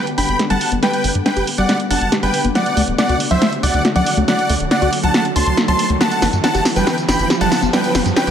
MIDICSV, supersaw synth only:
0, 0, Header, 1, 2, 480
1, 0, Start_track
1, 0, Key_signature, 1, "major"
1, 0, Tempo, 431655
1, 919, Time_signature, 4, 2, 24, 8
1, 9236, End_track
2, 0, Start_track
2, 0, Title_t, "Supersaw synth"
2, 0, Program_c, 0, 81
2, 197, Note_on_c, 0, 79, 77
2, 198, Note_on_c, 0, 83, 94
2, 417, Note_off_c, 0, 79, 0
2, 417, Note_off_c, 0, 83, 0
2, 557, Note_on_c, 0, 81, 94
2, 558, Note_on_c, 0, 78, 74
2, 777, Note_off_c, 0, 78, 0
2, 777, Note_off_c, 0, 81, 0
2, 918, Note_on_c, 0, 79, 97
2, 919, Note_on_c, 0, 71, 76
2, 1211, Note_off_c, 0, 71, 0
2, 1211, Note_off_c, 0, 79, 0
2, 1398, Note_on_c, 0, 71, 74
2, 1398, Note_on_c, 0, 79, 96
2, 1618, Note_off_c, 0, 71, 0
2, 1618, Note_off_c, 0, 79, 0
2, 1757, Note_on_c, 0, 78, 89
2, 1758, Note_on_c, 0, 74, 72
2, 1977, Note_off_c, 0, 74, 0
2, 1977, Note_off_c, 0, 78, 0
2, 2117, Note_on_c, 0, 78, 77
2, 2118, Note_on_c, 0, 81, 96
2, 2337, Note_off_c, 0, 78, 0
2, 2337, Note_off_c, 0, 81, 0
2, 2477, Note_on_c, 0, 79, 93
2, 2478, Note_on_c, 0, 71, 78
2, 2697, Note_off_c, 0, 71, 0
2, 2697, Note_off_c, 0, 79, 0
2, 2838, Note_on_c, 0, 74, 74
2, 2838, Note_on_c, 0, 78, 97
2, 3130, Note_off_c, 0, 74, 0
2, 3130, Note_off_c, 0, 78, 0
2, 3317, Note_on_c, 0, 78, 95
2, 3318, Note_on_c, 0, 74, 76
2, 3537, Note_off_c, 0, 74, 0
2, 3537, Note_off_c, 0, 78, 0
2, 3678, Note_on_c, 0, 72, 74
2, 3678, Note_on_c, 0, 76, 91
2, 3897, Note_off_c, 0, 76, 0
2, 3898, Note_off_c, 0, 72, 0
2, 4038, Note_on_c, 0, 74, 76
2, 4038, Note_on_c, 0, 78, 92
2, 4257, Note_off_c, 0, 74, 0
2, 4257, Note_off_c, 0, 78, 0
2, 4398, Note_on_c, 0, 74, 77
2, 4399, Note_on_c, 0, 78, 94
2, 4618, Note_off_c, 0, 74, 0
2, 4618, Note_off_c, 0, 78, 0
2, 4758, Note_on_c, 0, 74, 77
2, 4758, Note_on_c, 0, 78, 100
2, 5051, Note_off_c, 0, 74, 0
2, 5051, Note_off_c, 0, 78, 0
2, 5238, Note_on_c, 0, 74, 76
2, 5238, Note_on_c, 0, 78, 92
2, 5458, Note_off_c, 0, 74, 0
2, 5458, Note_off_c, 0, 78, 0
2, 5598, Note_on_c, 0, 78, 73
2, 5598, Note_on_c, 0, 81, 91
2, 5818, Note_off_c, 0, 78, 0
2, 5818, Note_off_c, 0, 81, 0
2, 5958, Note_on_c, 0, 81, 79
2, 5958, Note_on_c, 0, 84, 93
2, 6177, Note_off_c, 0, 81, 0
2, 6177, Note_off_c, 0, 84, 0
2, 6318, Note_on_c, 0, 84, 95
2, 6319, Note_on_c, 0, 81, 76
2, 6538, Note_off_c, 0, 81, 0
2, 6538, Note_off_c, 0, 84, 0
2, 6679, Note_on_c, 0, 78, 77
2, 6679, Note_on_c, 0, 81, 97
2, 6971, Note_off_c, 0, 78, 0
2, 6971, Note_off_c, 0, 81, 0
2, 7159, Note_on_c, 0, 78, 77
2, 7159, Note_on_c, 0, 81, 95
2, 7378, Note_off_c, 0, 78, 0
2, 7378, Note_off_c, 0, 81, 0
2, 7519, Note_on_c, 0, 71, 72
2, 7519, Note_on_c, 0, 79, 88
2, 7738, Note_off_c, 0, 71, 0
2, 7738, Note_off_c, 0, 79, 0
2, 7878, Note_on_c, 0, 79, 77
2, 7879, Note_on_c, 0, 83, 95
2, 8098, Note_off_c, 0, 79, 0
2, 8098, Note_off_c, 0, 83, 0
2, 8239, Note_on_c, 0, 78, 76
2, 8239, Note_on_c, 0, 81, 96
2, 8458, Note_off_c, 0, 78, 0
2, 8458, Note_off_c, 0, 81, 0
2, 8598, Note_on_c, 0, 71, 76
2, 8599, Note_on_c, 0, 79, 99
2, 8891, Note_off_c, 0, 71, 0
2, 8891, Note_off_c, 0, 79, 0
2, 9077, Note_on_c, 0, 79, 97
2, 9078, Note_on_c, 0, 71, 77
2, 9236, Note_off_c, 0, 71, 0
2, 9236, Note_off_c, 0, 79, 0
2, 9236, End_track
0, 0, End_of_file